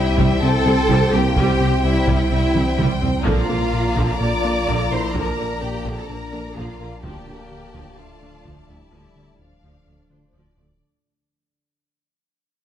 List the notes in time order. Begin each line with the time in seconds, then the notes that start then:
Already playing: C2 G3 C4 E4 C5 E5 G5
0.18 C2 C3 G3, taiko
0.41 C2 G3 C4 A4 A5
0.65 C2 C3 G3 E4
0.89 C2 C3 G3, taiko
1.13 C2 G3 A#3 C4 G4 G5
1.36 C2 C3 G3 C4 G4 G5, taiko
1.60 C2 C3 G3 C4
1.83 C2 G3 E4 E5
2.07 C2 C3 G3, taiko
2.30 C2 G3 C4 E4 E5
2.54 C2 C3 G3 E4, taiko mid
2.78 C2 C3 G3, taiko mid
3.01 C2 G3 C4, taiko low
3.24 A#1 A#2 D3 F3 A#3 D4 F4 D5 F5 A#5, taiko
3.28 A#1
3.49 A#1 D3 A#3 F4
3.73 A#2
3.96 A#1 A#2 D3 F3 A#3, taiko
4.20 A#1 A#2 D3 A#3 F4 A#4 D5 D6
4.43 A#1 D3 A#3 D4 F4
4.67 A#1 A#2 D3 F3, taiko
4.91 A#1 A#2 D3 A#3 E4 A#4 C5 C6
5.14 A#1 A#2 D3 F3 A#3 D4 A#4 A#5, taiko
5.37 A#1 D3 A#3 F4
5.62 A#2 A#3 G4 G5
5.85 A#1 A#2 D3 F3 A#3, taiko
5.97 C4 A4 A5
6.09 A#1 A#2 D3 A#3 D4 A#4 A#5
6.32 A#1 D3 A#3 D4 F4
6.56 A#1 A#2 D3 F3 A#3 F4 F5, taiko
6.80 A#1 A#2 D3 A#3 A#4
7.03 D1 D2 D3 F3 A#3 D4 G4 A4 D5 G5 A5, taiko
7.28 D2 D3 F3 A3
7.51 D2
7.74 D2 D3 F3, taiko
7.98 D2 F3 A3 D4 F4 F5
8.22 D2 D3 F3 A3 D4
8.45 D2 D3 F3, taiko
8.69 D2 F3 G3 A3 D4 E4 E5
8.92 D2 D3 F3 G3 E4 E5
9.16 D2 D3 F3 A3
9.39 D2 F3 D4 D5 F5
9.63 D2 D3 F3
9.87 D2 F3 A3 D4
10.10 D2 D3 F3 A3 D4 C5
10.33 D2 D3 F3 D5
10.57 D2 F3 A3 D4